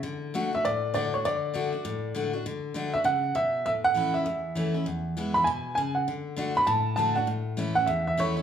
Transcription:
0.03 D3
0.34 D3 A3 D4 F#4
0.53 D4 F#4 E5
0.65 A2 D5
0.94 D3 A3 D4 F#4 D5
1.14 D4 F#4 C#5
1.25 D3 D5
1.54 D3 A3 D4 F#4
1.72 D4 F#4
1.85 A2
2.15 D3 A3 D4 F#4
2.33 D4 F#4
2.46 D3
2.74 D3 A3 D4 F#4
2.93 D4 F#4 E5
3.04 C#3 F#5
3.35 B2 E5
3.66 A2 E5
3.84 F#5
3.94 E3 A3 C#4 E4
4.14 C#4 E4 E5
4.24 E2 E5
4.55 E3 A3 C#4 E4
4.74 C#4 E4
4.86 E2
5.17 E3 G#3 B3 E4
5.34 B3 E4 B5
5.44 B2 G#5
5.75 C#3 G#5
5.95 F#5
6.08 D3
6.36 D3 A3 D4 F#4
6.55 D4 F#4 B5
6.67 A2 A5
6.96 D3 A3 D4 F#4 A5
7.16 D4 F#4 F#5
7.27 A2
7.57 E3 A3 C#4 E4
7.75 C#4 E4 F#5
7.86 E2 E5
8.07 E5
8.18 E3 A3 C#4 E4 C#5
8.37 C#4 E4

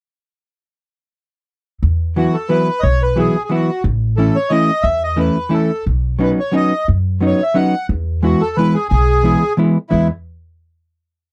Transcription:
1.83 E2
2.16 E3 F#3 B3 E4 F#4
2.34 A4
2.49 E3 F#3 B3 E4 B4
2.80 B1 C#5 D#5
3.03 B4
3.16 E3 F#3 B3 E4 G#4
3.45 G#4
3.49 E3 F#3 B3 E4 F#4
3.84 A1
4.17 E3 A3 C#4 E4 A4
4.36 C#5
4.50 E3 A3 C#4 E4 D#5
4.82 E2 E5
5.04 D#5
5.16 E3 A3 C#4 E4 B4
5.49 E3 A3 C#4 E4
5.54 A4
5.86 B1
6.19 F#3 B3 C#4 D#4
6.23 B4
6.40 C#5
6.52 F#3 B3 C#4 D#4
6.56 D#5
6.88 F#2
7.21 F#3 B3 C#4 D#4
7.27 C#5
7.42 E5
7.54 F#3 B3 C#4 D#4 F#5
7.89 E2
8.22 E3 G#3 B3 E4 F#4
8.41 A4
8.57 E3 G#3 B3 E4 B4
8.74 G#4
8.89 B1 G#4
9.23 E3 G#3 B3 E4
9.57 E3 G#3 B3 E4
9.89 E2 E3 G#3 B3 E4

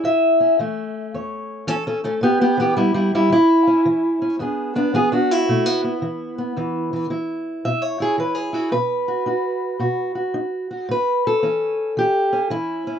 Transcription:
Already playing: E4
0.04 E2 E5
0.40 C#4
0.59 E3 A3
1.14 E2 C#5
1.67 E3 C#4 A4
1.87 C#4 A4
2.04 A3 C#4 A4
2.21 A2 B3 G4
2.41 B3 G4
2.57 E3 B3 G4
2.77 G3 E4
2.94 G3 E4
3.15 G3 E4
3.30 E3 E4
3.67 C#4
3.85 E3
4.22 C#4
4.39 E2 B3 D4 G#4
4.76 B3 D4 B4
4.94 E3 B3 G#4
5.12 D4 F#4
5.31 E4
5.49 B2 A3
5.66 B3
5.84 B3
6.02 E3
6.38 B3
6.57 E2 E3
6.93 E3
7.10 E3 E4
7.65 B2 E5
7.82 C#5
8.00 E4 G#4
8.18 E3 B4
8.35 G#4
8.53 E4 F#4
8.71 B2 B4
9.08 F#4
9.26 D#4 F#4
9.79 B2 F#4
10.15 F#4
10.34 D#4
10.71 F#4
10.89 A2 B4
11.27 A4
11.43 E3 C#4
11.97 E3 G4
12.33 C#4
12.50 E3 E4
12.87 C#4

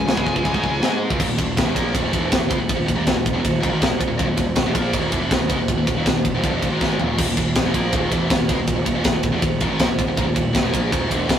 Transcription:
Already playing: G#5
0.07 C#2 C#3 G#3, snare, china
0.16 C#2 C#3 G#3, kick
0.26 C#2 C#3 G#3, kick
0.35 C#2 C#3 G#3, kick
0.45 C#2 C#3 G#3, kick, china
0.54 G#2 G#3 D#4, kick
0.63 C#2 C#3 G#3 C#4, kick
0.80 G#2 G#3 D#4 G#4, snare, china
1.10 C#2 C#3 G#3, kick
1.19 D#1 D#2 A#2, kick, crash
1.27 D#1 D#2 A#2
1.37 D#1 D#2 A#2, kick, ride
1.57 D#1 D#2 A#2, kick, snare, ride
1.65 E1 E2 B2
1.74 A#1 A#2 F3 A#3, kick, ride
1.93 D#1 D#2 A#2 D#3, kick, ride
2.12 E1 E2 B2 E3, kick, ride
2.32 kick, snare, ride
2.40 D#1 D#2 A#2
2.49 C#2 C#3 G#3, kick, ride
2.57 D#1 D#2 A#2
2.69 kick, ride
2.76 D#1 D#2 A#2
2.86 D#1 D#2 A#2, kick, ride
2.95 D#1 D#2 A#2
3.05 D#1 D#2 A#2, kick, snare, ride
3.14 D#1 D#2 A#2
3.26 kick, ride
3.33 E1 E2 B2
3.43 D#1 D#2 A#2, kick, ride
3.60 D#1 D#2 A#2, kick, ride
3.71 G#1 G#2 D#3
3.80 A#1 A#2 F3, kick, snare, ride
3.89 D#1 D#2 A#2
3.99 muted distorted electric guitar stroke, muted picked electric bass stroke, kick, ride
4.08 D#1 D#2 A#2
4.18 D#1 D#2 A#2, kick, ride
4.27 D#1 D#2 A#2
4.37 D#1 D#2 A#2, kick, ride
4.56 D#1 D#2 A#2, kick, snare, ride
4.65 E1 E2 B2
4.74 A#1 A#2 F3 A#3, kick, ride
4.92 D#1 D#2 A#2 D#3, kick, ride
5.11 E1 E2 B2 E3, kick, ride
5.31 kick, snare, ride
5.39 D#1 D#2 A#2
5.49 C#2 C#3 G#3, kick, ride
5.56 D#1 D#2 A#2
5.68 kick, ride
5.76 D#1 D#2 A#2
5.87 D#1 D#2 A#2, kick, ride
5.95 D#1 D#2 A#2
6.06 D#1 D#2 A#2, kick, snare, ride
6.14 D#1 D#2 A#2
6.25 kick, ride
6.33 E1 E2 B2
6.43 G1 G2 D3, kick, ride
6.52 E1 E2 B2
6.62 D#1 D#2 A#2, kick, ride
6.70 G#1 G#2 D#3 G#3
6.81 kick, snare
6.99 D#1 D#2 A#2 D#3, floor tom
7.18 D#1 D#2 A#2, kick, crash
7.27 D#1 D#2 A#2
7.37 D#1 D#2 A#2, kick, ride
7.55 D#1 D#2 A#2, kick, snare, ride
7.64 E1 E2 B2
7.74 A#1 A#2 F3 A#3, kick, ride
7.92 D#1 D#2 A#2 D#3, kick, ride
8.11 E1 E2 B2 E3, kick, ride
8.30 kick, snare, ride
8.39 D#1 D#2 A#2
8.49 C#2 C#3 G#3, kick, ride
8.58 D#1 D#2 A#2
8.67 kick, ride
8.76 D#1 D#2 A#2
8.85 D#1 D#2 A#2, kick, ride
8.94 D#1 D#2 A#2
9.04 D#1 D#2 A#2, kick, snare, ride
9.12 D#1 D#2 A#2
9.23 kick, ride
9.31 E1 E2 B2
9.42 D#1 D#2 A#2, kick, ride
9.60 D#1 D#2 A#2, kick, ride
9.68 G#1 G#2 D#3
9.79 A#1 A#2 F3, kick, snare, ride
9.86 D#1 D#2 A#2
9.98 muted picked electric bass stroke, muted distorted electric guitar stroke, kick, ride
10.05 D#1 D#2 A#2
10.17 D#1 D#2 A#2, kick, ride
10.24 D#1 D#2 A#2
10.34 D#1 D#2 A#2, kick, ride
10.53 D#1 D#2 A#2, kick, snare, ride
10.61 E1 E2 B2
10.70 A#1 A#2 F3 A#3, kick, ride
10.90 D#1 D#2 A#2 D#3, kick, ride
11.09 E1 E2 B2 E3, kick, ride
11.29 kick, snare, ride

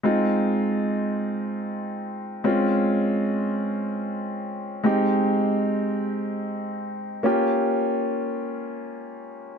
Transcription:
0.03 G#3 C4 D#4 F4
2.44 G#3 C4 C#4 F4
4.84 G#3 C4 D#4 G4
7.23 A#3 C#4 F4 G4

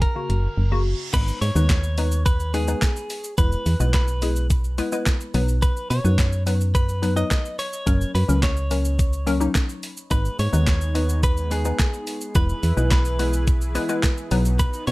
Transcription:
0.02 A#4, kick, closed hi-hat, reverse cymbal
0.16 C#3 A#3 F#4
0.30 F#1, closed hi-hat
0.58 F#1
0.72 C#3 A#3 F#4
1.14 G#1 G#3 B3 D#4 B4, kick, closed hi-hat, crash, shaker
1.28 shaker
1.41 G#2 C#5, open hi-hat, shaker
1.55 D#2 G#3 B3 D#4 B4, shaker
1.70 kick, snare, clap, closed hi-hat, shaker
1.84 shaker
1.98 G#3 B3 D#4 B4, open hi-hat, shaker
2.12 shaker
2.26 B4, kick, closed hi-hat, shaker
2.40 shaker
2.54 G#3 B3 D#4 G#4 B4, open hi-hat, shaker
2.68 G#3 B3 D#4 B4, shaker
2.82 kick, snare, clap, closed hi-hat, shaker
2.96 shaker
3.10 open hi-hat, shaker
3.24 shaker
3.38 E1 G#3 B3 E4 B4, kick, closed hi-hat, shaker
3.52 shaker
3.66 E2, open hi-hat, shaker
3.80 B1 G#3 B3 E4 B4, shaker
3.94 B4, kick, snare, clap, closed hi-hat, shaker
4.08 shaker
4.22 G#3 B3 E4 G#4, open hi-hat, shaker
4.36 shaker
4.50 kick, closed hi-hat, shaker
4.64 shaker
4.78 G#3 B3 E4 B4, open hi-hat, shaker
4.92 G#3 B3 E4 B4, shaker
5.06 kick, snare, clap, closed hi-hat, shaker
5.21 shaker
5.34 B1 F#3 B3 D#4 B4, open hi-hat, shaker
5.48 shaker
5.62 B4, kick, closed hi-hat, shaker
5.77 shaker
5.90 B2 C#5, open hi-hat, shaker
6.04 F#2 F#3 B3 D#4 B4, shaker
6.19 kick, snare, clap, closed hi-hat, shaker
6.33 shaker
6.47 F#3 B3 D#4 B4, open hi-hat, shaker
6.61 shaker
6.75 B4, kick, closed hi-hat, shaker
6.89 shaker
7.02 F#3 B3 D#4 B4, open hi-hat, shaker
7.16 F#3 B3 D#4 B4 D#5, shaker
7.31 kick, snare, clap, closed hi-hat, shaker
7.46 shaker
7.59 C#5, open hi-hat, shaker
7.73 shaker
7.86 F#1 F#3 A#3 C#4 A#4, kick, closed hi-hat, shaker
8.01 shaker
8.15 F#2 B4, open hi-hat, shaker
8.28 C#2 F#3 A#3 C#4 A#4, shaker
8.43 C#5, kick, snare, clap, closed hi-hat, shaker
8.57 shaker
8.71 F#3 A#3 C#4 A#4, open hi-hat, shaker
8.85 shaker
8.99 kick, closed hi-hat, shaker
9.13 shaker
9.27 F#3 A#3 C#4 A#4, open hi-hat, shaker
9.40 F#3 A#3 C#4 D#4, shaker
9.55 kick, snare, clap, closed hi-hat, shaker
9.69 shaker
9.83 open hi-hat, shaker
9.97 shaker
10.11 G#1 G#3 B3 D#4 B4, kick, closed hi-hat, shaker
10.25 shaker
10.39 G#2 C#5, open hi-hat, shaker
10.53 D#2 G#3 B3 D#4 B4, shaker
10.67 kick, snare, clap, closed hi-hat, shaker
10.81 shaker
10.95 G#3 B3 D#4 B4, open hi-hat, shaker
11.09 shaker
11.23 B4, kick, closed hi-hat, shaker
11.37 shaker
11.51 G#3 B3 D#4 G#4 B4, open hi-hat, shaker
11.65 G#3 B3 D#4 B4, shaker
11.79 kick, snare, clap, closed hi-hat, shaker
11.94 shaker
12.07 open hi-hat, shaker
12.21 shaker
12.35 E1 E3 G#3 B3 E4 G#4 B4, kick, closed hi-hat, shaker
12.49 shaker
12.63 E2, open hi-hat, shaker
12.77 B1 G#3 B3 E4 B4, shaker
12.91 B4, kick, snare, clap, closed hi-hat, shaker
13.05 shaker
13.19 G#3 B3 E4 B4, open hi-hat, shaker
13.33 shaker
13.47 kick, closed hi-hat, shaker
13.61 shaker
13.75 G#3 B3 E4 B4, open hi-hat, shaker
13.89 G#3 B3 E4 B4, shaker
14.03 kick, snare, clap, closed hi-hat, shaker
14.18 shaker
14.31 B1 F#3 B3 D#4 B4, open hi-hat, shaker
14.45 shaker
14.59 B4, kick, closed hi-hat, shaker
14.74 shaker
14.87 B2 C#5, open hi-hat, shaker

